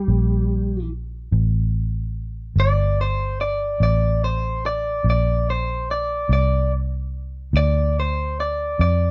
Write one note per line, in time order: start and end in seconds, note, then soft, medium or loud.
0.00 0.88 G3 medium
0.08 1.29 A#1 medium
1.32 2.53 A1 medium
2.56 3.77 G1 medium
2.60 2.98 D5 medium
3.01 3.40 C5 medium
3.41 3.80 D5 medium
3.80 5.01 A1 medium
3.80 4.22 D5 medium
4.24 4.64 C5 medium
4.66 5.05 D5 medium
5.04 6.26 A#1 medium
5.10 5.48 D5 medium
5.50 5.89 C5 medium
5.91 6.30 D5 medium
6.29 7.51 C2 medium
6.29 6.72 D5 medium
7.53 8.75 D2 medium
7.53 7.96 D5 medium
8.00 8.38 C5 medium
8.40 8.80 D5 medium
8.79 9.11 F2 medium
8.79 9.11 D5 medium